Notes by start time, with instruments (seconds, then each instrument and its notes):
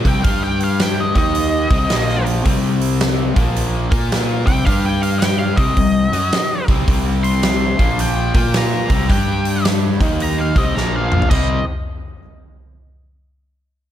0.04 fingered electric bass C2, distorted electric guitar C3 G3 C4, lead electric guitar G5, kick, open hi-hat
0.23 fingered electric bass G2, distorted electric guitar G3 D4 G4, lead electric guitar F5, kick, open hi-hat
0.44 lead electric guitar G5
0.60 lead electric guitar F5, open hi-hat
0.79 lead electric guitar G5, snare, open hi-hat
1.00 lead electric guitar D#5
1.15 fingered electric bass D#2, distorted electric guitar D#3 A#3 D#4, lead electric guitar D#5, kick, open hi-hat
1.35 open hi-hat
1.70 fingered electric bass C2, distorted electric guitar C3 G3 C4, kick, open hi-hat
1.89 fingered electric bass A#1, distorted electric guitar A#2 F3 A#3, snare, open hi-hat
2.09 snare
2.26 open hi-hat
2.44 fingered electric bass C2, distorted electric guitar C3 G3 C4, kick, open hi-hat
2.81 open hi-hat
3.01 snare, open hi-hat
3.35 fingered electric bass A#1, distorted electric guitar A#2 F3 A#3, kick, open hi-hat
3.56 open hi-hat
3.90 fingered electric bass A#2, distorted electric guitar A#3 F4 A#4, kick, open hi-hat
4.12 snare, open hi-hat
4.45 fingered electric bass C2, distorted electric guitar C3 G3 C4, lead electric guitar G5, kick, open hi-hat
4.64 fingered electric bass G2, distorted electric guitar G3 D4 G4, lead electric guitar F5, kick, open hi-hat
4.85 lead electric guitar G5
5.03 lead electric guitar F5, open hi-hat
5.19 lead electric guitar G5, snare, open hi-hat
5.39 lead electric guitar F5
5.56 fingered electric bass C2, distorted electric guitar C3 G3 C4, lead electric guitar D#5, kick, open hi-hat
5.77 fingered electric bass C2, distorted electric guitar C3 G3, kick, open hi-hat
6.11 fingered electric bass F#2, distorted electric guitar F#3 C#4 F#4, open hi-hat
6.32 snare, open hi-hat
6.68 fingered electric bass C2, distorted electric guitar C3 G3 C4, kick, open hi-hat
6.87 fingered electric bass C2, distorted electric guitar C3 G3 C4, kick, open hi-hat
7.23 lead electric guitar C6, open hi-hat
7.43 lead electric guitar C6, snare, open hi-hat
7.78 fingered electric bass A#1, distorted electric guitar A#2 F3 A#3, kick, open hi-hat
7.99 lead electric guitar G5, open hi-hat
8.34 fingered electric bass A#2, distorted electric guitar A#3 F4 A#4, kick, open hi-hat
8.54 lead electric guitar A#5, snare, open hi-hat
8.90 fingered electric bass C2, distorted electric guitar C3 G3 C4, kick, open hi-hat
9.08 fingered electric bass G2, distorted electric guitar G3 D4 G4, lead electric guitar G5, kick, open hi-hat
9.45 open hi-hat
9.65 snare, open hi-hat
10.00 fingered electric bass D#2, distorted electric guitar D#3 A#3 D#4, kick, open hi-hat
10.20 lead electric guitar A#5, open hi-hat
10.38 lead electric guitar F5
10.56 fingered electric bass C2, distorted electric guitar C3 G3 C4, lead electric guitar D#5, kick, open hi-hat
10.75 fingered electric bass A#1, distorted electric guitar A#2 F3 A#3, lead electric guitar A#5, snare
10.96 lead electric guitar F5
11.12 mid tom
11.22 floor tom
11.30 fingered electric bass C2, distorted electric guitar C3 G3 C4, lead electric guitar D#5, kick, crash